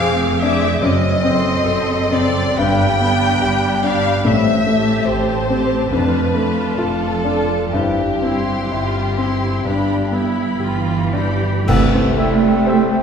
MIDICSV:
0, 0, Header, 1, 14, 480
1, 0, Start_track
1, 0, Key_signature, 0, "major"
1, 0, Tempo, 826446
1, 475, Time_signature, 4, 2, 24, 8
1, 960, Tempo, 927357
1, 1440, Tempo, 834492
1, 3360, Tempo, 874636
1, 3840, Tempo, 952381
1, 5760, Tempo, 1073345
1, 6240, Tempo, 995025
1, 6892, End_track
2, 0, Start_track
2, 0, Title_t, "Violin section"
2, 0, Program_c, 0, 48
2, 0, Note_on_c, 0, 86, 55
2, 228, Note_off_c, 0, 86, 0
2, 235, Note_on_c, 0, 86, 53
2, 468, Note_off_c, 0, 86, 0
2, 710, Note_on_c, 0, 84, 54
2, 1189, Note_off_c, 0, 84, 0
2, 1201, Note_on_c, 0, 84, 50
2, 1436, Note_off_c, 0, 84, 0
2, 1440, Note_on_c, 0, 83, 52
2, 1679, Note_off_c, 0, 83, 0
2, 1691, Note_on_c, 0, 83, 54
2, 2157, Note_off_c, 0, 83, 0
2, 2165, Note_on_c, 0, 83, 54
2, 2399, Note_off_c, 0, 83, 0
2, 2647, Note_on_c, 0, 81, 50
2, 3110, Note_off_c, 0, 81, 0
2, 3126, Note_on_c, 0, 81, 52
2, 3355, Note_off_c, 0, 81, 0
2, 3362, Note_on_c, 0, 81, 47
2, 3593, Note_off_c, 0, 81, 0
2, 3599, Note_on_c, 0, 81, 45
2, 4061, Note_off_c, 0, 81, 0
2, 4067, Note_on_c, 0, 81, 44
2, 4306, Note_off_c, 0, 81, 0
2, 4557, Note_on_c, 0, 84, 45
2, 5032, Note_off_c, 0, 84, 0
2, 5039, Note_on_c, 0, 84, 43
2, 5272, Note_off_c, 0, 84, 0
2, 5278, Note_on_c, 0, 83, 45
2, 5510, Note_off_c, 0, 83, 0
2, 5516, Note_on_c, 0, 83, 44
2, 5985, Note_off_c, 0, 83, 0
2, 6000, Note_on_c, 0, 83, 40
2, 6237, Note_off_c, 0, 83, 0
2, 6726, Note_on_c, 0, 76, 64
2, 6892, Note_off_c, 0, 76, 0
2, 6892, End_track
3, 0, Start_track
3, 0, Title_t, "Flute"
3, 0, Program_c, 1, 73
3, 6243, Note_on_c, 1, 79, 66
3, 6298, Note_off_c, 1, 79, 0
3, 6483, Note_on_c, 1, 79, 45
3, 6536, Note_off_c, 1, 79, 0
3, 6718, Note_on_c, 1, 79, 51
3, 6773, Note_off_c, 1, 79, 0
3, 6892, End_track
4, 0, Start_track
4, 0, Title_t, "Oboe"
4, 0, Program_c, 2, 68
4, 6239, Note_on_c, 2, 76, 61
4, 6316, Note_off_c, 2, 76, 0
4, 6490, Note_on_c, 2, 76, 55
4, 6567, Note_off_c, 2, 76, 0
4, 6728, Note_on_c, 2, 76, 54
4, 6805, Note_off_c, 2, 76, 0
4, 6892, End_track
5, 0, Start_track
5, 0, Title_t, "Violin section"
5, 0, Program_c, 3, 48
5, 0, Note_on_c, 3, 77, 89
5, 238, Note_off_c, 3, 77, 0
5, 239, Note_on_c, 3, 76, 78
5, 475, Note_off_c, 3, 76, 0
5, 476, Note_on_c, 3, 75, 83
5, 1187, Note_off_c, 3, 75, 0
5, 1204, Note_on_c, 3, 74, 82
5, 1438, Note_on_c, 3, 79, 86
5, 1442, Note_off_c, 3, 74, 0
5, 2162, Note_off_c, 3, 79, 0
5, 2163, Note_on_c, 3, 77, 82
5, 2403, Note_off_c, 3, 77, 0
5, 2405, Note_on_c, 3, 76, 80
5, 2868, Note_off_c, 3, 76, 0
5, 2873, Note_on_c, 3, 72, 73
5, 3358, Note_off_c, 3, 72, 0
5, 3358, Note_on_c, 3, 71, 72
5, 3839, Note_off_c, 3, 71, 0
5, 3841, Note_on_c, 3, 69, 75
5, 4309, Note_on_c, 3, 67, 69
5, 4314, Note_off_c, 3, 69, 0
5, 5975, Note_off_c, 3, 67, 0
5, 6720, Note_on_c, 3, 67, 62
5, 6892, Note_off_c, 3, 67, 0
5, 6892, End_track
6, 0, Start_track
6, 0, Title_t, "Clarinet"
6, 0, Program_c, 4, 71
6, 5762, Note_on_c, 4, 64, 66
6, 6239, Note_on_c, 4, 69, 93
6, 6246, Note_off_c, 4, 64, 0
6, 6892, Note_off_c, 4, 69, 0
6, 6892, End_track
7, 0, Start_track
7, 0, Title_t, "Viola section"
7, 0, Program_c, 5, 48
7, 0, Note_on_c, 5, 60, 57
7, 0, Note_on_c, 5, 68, 55
7, 225, Note_off_c, 5, 60, 0
7, 226, Note_off_c, 5, 68, 0
7, 232, Note_on_c, 5, 60, 55
7, 233, Note_on_c, 5, 68, 58
7, 466, Note_off_c, 5, 60, 0
7, 467, Note_off_c, 5, 68, 0
7, 714, Note_on_c, 5, 60, 56
7, 714, Note_on_c, 5, 69, 57
7, 1191, Note_off_c, 5, 60, 0
7, 1191, Note_off_c, 5, 69, 0
7, 1200, Note_on_c, 5, 60, 49
7, 1201, Note_on_c, 5, 69, 50
7, 1436, Note_off_c, 5, 60, 0
7, 1436, Note_off_c, 5, 69, 0
7, 1437, Note_on_c, 5, 67, 54
7, 1438, Note_on_c, 5, 62, 46
7, 1670, Note_off_c, 5, 62, 0
7, 1672, Note_off_c, 5, 67, 0
7, 1677, Note_on_c, 5, 62, 59
7, 1679, Note_on_c, 5, 67, 53
7, 2150, Note_off_c, 5, 62, 0
7, 2151, Note_off_c, 5, 67, 0
7, 2162, Note_on_c, 5, 62, 50
7, 2162, Note_on_c, 5, 67, 56
7, 2397, Note_off_c, 5, 62, 0
7, 2397, Note_off_c, 5, 67, 0
7, 2640, Note_on_c, 5, 60, 50
7, 2642, Note_on_c, 5, 67, 50
7, 3106, Note_off_c, 5, 60, 0
7, 3107, Note_off_c, 5, 67, 0
7, 3114, Note_on_c, 5, 60, 44
7, 3115, Note_on_c, 5, 67, 47
7, 3353, Note_off_c, 5, 60, 0
7, 3354, Note_off_c, 5, 67, 0
7, 3361, Note_on_c, 5, 62, 41
7, 3362, Note_on_c, 5, 65, 47
7, 3589, Note_off_c, 5, 65, 0
7, 3593, Note_off_c, 5, 62, 0
7, 3596, Note_on_c, 5, 65, 50
7, 3598, Note_on_c, 5, 62, 47
7, 4061, Note_off_c, 5, 65, 0
7, 4062, Note_off_c, 5, 62, 0
7, 4069, Note_on_c, 5, 62, 46
7, 4071, Note_on_c, 5, 65, 47
7, 4308, Note_off_c, 5, 62, 0
7, 4309, Note_off_c, 5, 65, 0
7, 4565, Note_on_c, 5, 64, 40
7, 4756, Note_off_c, 5, 64, 0
7, 4811, Note_on_c, 5, 65, 56
7, 5030, Note_off_c, 5, 65, 0
7, 5044, Note_on_c, 5, 64, 47
7, 5279, Note_off_c, 5, 64, 0
7, 5282, Note_on_c, 5, 62, 50
7, 5515, Note_on_c, 5, 64, 59
7, 5519, Note_off_c, 5, 62, 0
7, 5758, Note_off_c, 5, 64, 0
7, 5759, Note_on_c, 5, 65, 57
7, 5995, Note_off_c, 5, 65, 0
7, 5997, Note_on_c, 5, 67, 57
7, 6240, Note_off_c, 5, 67, 0
7, 6720, Note_on_c, 5, 67, 60
7, 6892, Note_off_c, 5, 67, 0
7, 6892, End_track
8, 0, Start_track
8, 0, Title_t, "French horn section"
8, 0, Program_c, 6, 60
8, 482, Note_on_c, 6, 60, 61
8, 484, Note_on_c, 6, 57, 55
8, 654, Note_off_c, 6, 57, 0
8, 654, Note_off_c, 6, 60, 0
8, 1438, Note_on_c, 6, 55, 60
8, 1438, Note_on_c, 6, 59, 56
8, 1620, Note_off_c, 6, 55, 0
8, 1620, Note_off_c, 6, 59, 0
8, 2404, Note_on_c, 6, 60, 53
8, 2405, Note_on_c, 6, 55, 51
8, 2578, Note_off_c, 6, 55, 0
8, 2578, Note_off_c, 6, 60, 0
8, 3357, Note_on_c, 6, 62, 49
8, 3360, Note_on_c, 6, 57, 45
8, 3535, Note_off_c, 6, 62, 0
8, 3536, Note_off_c, 6, 57, 0
8, 4315, Note_on_c, 6, 64, 51
8, 4318, Note_on_c, 6, 60, 49
8, 4506, Note_off_c, 6, 64, 0
8, 4507, Note_off_c, 6, 60, 0
8, 5274, Note_on_c, 6, 59, 45
8, 5274, Note_on_c, 6, 62, 44
8, 5457, Note_off_c, 6, 59, 0
8, 5457, Note_off_c, 6, 62, 0
8, 6241, Note_on_c, 6, 76, 63
8, 6243, Note_on_c, 6, 67, 61
8, 6892, Note_off_c, 6, 67, 0
8, 6892, Note_off_c, 6, 76, 0
8, 6892, End_track
9, 0, Start_track
9, 0, Title_t, "Grand piano"
9, 0, Program_c, 7, 0
9, 0, Control_c, 7, 64, 127
9, 0, Note_on_c, 7, 41, 68
9, 0, Note_on_c, 7, 60, 58
9, 3, Note_on_c, 7, 68, 59
9, 143, Note_off_c, 7, 60, 0
9, 244, Note_on_c, 7, 62, 52
9, 381, Note_off_c, 7, 68, 0
9, 452, Note_off_c, 7, 41, 0
9, 471, Note_on_c, 7, 42, 69
9, 477, Note_off_c, 7, 62, 0
9, 484, Control_c, 7, 64, 0
9, 553, Control_c, 7, 64, 127
9, 717, Note_on_c, 7, 60, 56
9, 962, Note_on_c, 7, 69, 56
9, 1102, Note_off_c, 7, 60, 0
9, 1199, Note_on_c, 7, 60, 55
9, 1348, Note_off_c, 7, 69, 0
9, 1418, Note_off_c, 7, 42, 0
9, 1440, Note_off_c, 7, 60, 0
9, 1440, Note_on_c, 7, 43, 63
9, 1451, Control_c, 7, 64, 0
9, 1540, Control_c, 7, 64, 127
9, 1685, Note_on_c, 7, 59, 53
9, 1923, Note_on_c, 7, 67, 55
9, 2067, Note_off_c, 7, 59, 0
9, 2159, Note_on_c, 7, 62, 56
9, 2308, Note_off_c, 7, 67, 0
9, 2380, Note_off_c, 7, 43, 0
9, 2399, Note_on_c, 7, 45, 63
9, 2401, Note_off_c, 7, 62, 0
9, 2413, Control_c, 7, 64, 0
9, 2503, Control_c, 7, 64, 127
9, 2638, Note_on_c, 7, 57, 49
9, 2877, Note_on_c, 7, 67, 53
9, 3018, Note_off_c, 7, 57, 0
9, 3116, Note_on_c, 7, 60, 48
9, 3262, Note_off_c, 7, 67, 0
9, 3334, Note_off_c, 7, 45, 0
9, 3359, Note_off_c, 7, 60, 0
9, 3362, Note_on_c, 7, 41, 58
9, 3369, Control_c, 7, 64, 0
9, 3439, Control_c, 7, 64, 127
9, 3593, Note_on_c, 7, 57, 46
9, 3836, Note_on_c, 7, 65, 50
9, 3975, Note_off_c, 7, 57, 0
9, 4066, Note_on_c, 7, 62, 45
9, 4212, Note_off_c, 7, 65, 0
9, 4294, Note_off_c, 7, 41, 0
9, 4311, Note_off_c, 7, 62, 0
9, 4312, Note_on_c, 7, 43, 58
9, 4322, Control_c, 7, 64, 0
9, 4415, Control_c, 7, 64, 127
9, 4558, Note_on_c, 7, 60, 42
9, 4808, Note_on_c, 7, 64, 49
9, 4948, Note_off_c, 7, 60, 0
9, 5040, Note_on_c, 7, 60, 43
9, 5185, Note_off_c, 7, 64, 0
9, 5259, Note_off_c, 7, 43, 0
9, 5276, Note_on_c, 7, 43, 55
9, 5277, Note_off_c, 7, 60, 0
9, 5290, Control_c, 7, 64, 0
9, 5377, Control_c, 7, 64, 127
9, 5514, Note_on_c, 7, 59, 47
9, 5759, Note_on_c, 7, 67, 45
9, 5895, Note_off_c, 7, 59, 0
9, 5994, Note_on_c, 7, 62, 42
9, 6143, Note_off_c, 7, 67, 0
9, 6220, Note_off_c, 7, 43, 0
9, 6239, Note_off_c, 7, 62, 0
9, 6244, Note_on_c, 7, 36, 72
9, 6250, Control_c, 7, 64, 0
9, 6347, Control_c, 7, 64, 127
9, 6368, Note_on_c, 7, 60, 54
9, 6483, Note_on_c, 7, 64, 54
9, 6558, Note_off_c, 7, 60, 0
9, 6602, Note_on_c, 7, 67, 61
9, 6672, Note_off_c, 7, 64, 0
9, 6717, Note_on_c, 7, 72, 57
9, 6790, Note_off_c, 7, 67, 0
9, 6842, Note_on_c, 7, 67, 59
9, 6892, Note_off_c, 7, 36, 0
9, 6892, Note_off_c, 7, 67, 0
9, 6892, Note_off_c, 7, 72, 0
9, 6892, End_track
10, 0, Start_track
10, 0, Title_t, "Bassoon"
10, 0, Program_c, 8, 70
10, 6245, Note_on_c, 8, 52, 71
10, 6489, Note_on_c, 8, 50, 66
10, 6496, Note_off_c, 8, 52, 0
10, 6722, Note_on_c, 8, 48, 70
10, 6729, Note_off_c, 8, 50, 0
10, 6892, Note_off_c, 8, 48, 0
10, 6892, End_track
11, 0, Start_track
11, 0, Title_t, "Cello section"
11, 0, Program_c, 10, 48
11, 0, Note_on_c, 10, 41, 64
11, 416, Note_off_c, 10, 41, 0
11, 474, Note_on_c, 10, 42, 70
11, 900, Note_off_c, 10, 42, 0
11, 957, Note_on_c, 10, 42, 65
11, 1384, Note_off_c, 10, 42, 0
11, 1438, Note_on_c, 10, 43, 65
11, 1864, Note_off_c, 10, 43, 0
11, 1916, Note_on_c, 10, 43, 65
11, 2343, Note_off_c, 10, 43, 0
11, 2400, Note_on_c, 10, 45, 61
11, 2818, Note_off_c, 10, 45, 0
11, 2872, Note_on_c, 10, 45, 63
11, 3299, Note_off_c, 10, 45, 0
11, 3353, Note_on_c, 10, 41, 60
11, 3778, Note_off_c, 10, 41, 0
11, 3834, Note_on_c, 10, 41, 55
11, 4252, Note_off_c, 10, 41, 0
11, 4311, Note_on_c, 10, 43, 54
11, 4749, Note_off_c, 10, 43, 0
11, 4799, Note_on_c, 10, 43, 52
11, 5220, Note_off_c, 10, 43, 0
11, 5279, Note_on_c, 10, 43, 60
11, 5701, Note_off_c, 10, 43, 0
11, 5758, Note_on_c, 10, 43, 59
11, 5758, Note_on_c, 10, 52, 73
11, 6183, Note_off_c, 10, 43, 0
11, 6221, Note_off_c, 10, 52, 0
11, 6241, Note_on_c, 10, 57, 96
11, 6892, Note_off_c, 10, 57, 0
11, 6892, End_track
12, 0, Start_track
12, 0, Title_t, "Tuba"
12, 0, Program_c, 11, 58
12, 6242, Note_on_c, 11, 36, 80
12, 6631, Note_off_c, 11, 36, 0
12, 6892, End_track
13, 0, Start_track
13, 0, Title_t, "Double bass section"
13, 0, Program_c, 12, 48
13, 0, Note_on_c, 12, 29, 63
13, 418, Note_off_c, 12, 29, 0
13, 475, Note_on_c, 12, 30, 68
13, 901, Note_off_c, 12, 30, 0
13, 961, Note_on_c, 12, 30, 67
13, 1386, Note_off_c, 12, 30, 0
13, 1442, Note_on_c, 12, 31, 66
13, 1866, Note_off_c, 12, 31, 0
13, 1922, Note_on_c, 12, 31, 63
13, 2347, Note_off_c, 12, 31, 0
13, 2400, Note_on_c, 12, 33, 65
13, 2819, Note_off_c, 12, 33, 0
13, 2871, Note_on_c, 12, 33, 57
13, 3299, Note_off_c, 12, 33, 0
13, 3358, Note_on_c, 12, 29, 55
13, 3781, Note_off_c, 12, 29, 0
13, 3839, Note_on_c, 12, 29, 52
13, 4255, Note_off_c, 12, 29, 0
13, 4314, Note_on_c, 12, 31, 58
13, 4751, Note_off_c, 12, 31, 0
13, 4807, Note_on_c, 12, 31, 56
13, 5223, Note_off_c, 12, 31, 0
13, 5280, Note_on_c, 12, 31, 56
13, 5702, Note_off_c, 12, 31, 0
13, 5761, Note_on_c, 12, 31, 46
13, 6184, Note_off_c, 12, 31, 0
13, 6243, Note_on_c, 12, 36, 77
13, 6632, Note_off_c, 12, 36, 0
13, 6892, End_track
14, 0, Start_track
14, 0, Title_t, "Drums"
14, 6241, Note_on_c, 9, 35, 71
14, 6241, Note_on_c, 9, 49, 69
14, 6290, Note_off_c, 9, 35, 0
14, 6290, Note_off_c, 9, 49, 0
14, 6892, End_track
0, 0, End_of_file